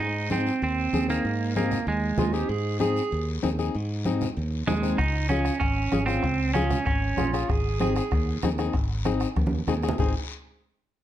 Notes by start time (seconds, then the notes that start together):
0.00 G#2 D#4, long guiro
0.30 C4 D#4 G#4, high conga, short guiro
0.46 short guiro
0.62 D#2 C4, high conga, long guiro
0.93 D#2 C4 D#4 G#4, high conga, short guiro
1.08 A#3 C4 D#4 G#4, short guiro
1.25 G#2, high conga, long guiro
1.56 A#3 C4 D#4 G#4, high conga, short guiro
1.71 low conga, short guiro
1.87 D#2 G#3, high conga, long guiro
2.18 D#2 C4 D#4 F4 G#4, high conga, low conga, short guiro
2.33 C4 D#4 G4 G#4, short guiro
2.49 G#2 G#4, high conga, long guiro
2.80 C4 D#4 G#4, high conga, short guiro
2.96 short guiro
3.11 D#2, high conga, long guiro
3.43 D#2 C4 D#4 G#4, high conga, short guiro
3.58 C4 D#4 G#4, short guiro
3.75 G#2, high conga, long guiro
4.05 C4 D#4 G#4, high conga, short guiro
4.21 low conga, short guiro
4.37 D#2, high conga, long guiro
4.67 D#2 G#3 C4 D#4 G#4, high conga, low conga, short guiro
4.83 C4 D#4 G#4, short guiro
4.98 C#2 D#4, bombo low, bombo rim, high conga, long guiro
5.29 C#4 F4 G#4, bombo rim, high conga, short guiro
5.45 bombo rim, short guiro
5.60 G#1 C#4, bombo low, bombo rim, high conga, long guiro
5.92 G#1 C#4 F4 G#4, bombo rim, high conga, short guiro
6.06 C4 C#4 F4 G#4, bombo rim, short guiro
6.23 C#2, bombo low, bombo rim, high conga, long guiro
6.54 C#4 F4 G#4, bombo rim, high conga, short guiro
6.70 bombo rim, low conga, short guiro
6.86 G#1 C#4, bombo low, bombo rim, high conga, long guiro
7.17 A#1 C#4 F4 G#4, bombo rim, high conga, low conga, short guiro
7.33 C#4 F4 G#4, bombo rim, short guiro
7.48 G#1 G#4, bombo low, bombo rim, high conga, long guiro
7.80 C4 D#4 G#4, bombo rim, high conga, short guiro
7.96 G#4, bombo rim, short guiro
8.11 D#2, bombo low, bombo rim, high conga, long guiro
8.42 D#2 C4 D#4 G#4, bombo rim, high conga, short guiro
8.58 C4 D#4 G#4, bombo rim, short guiro
8.73 G#1, bombo low, bombo rim, high conga, long guiro
9.05 C4 D#4 G#4, bombo rim, high conga, short guiro
9.20 bombo rim, short guiro
9.36 D#2, bombo low, bombo rim, high conga, long guiro
9.47 high conga
9.67 D#2 C4 D#4 G#4, bombo rim, low conga, short guiro
9.83 C4 D#4 G#4, bombo rim, short guiro
9.89 low conga
9.98 G#1 C4 D#4 G#4 C5, bombo low, low conga, long guiro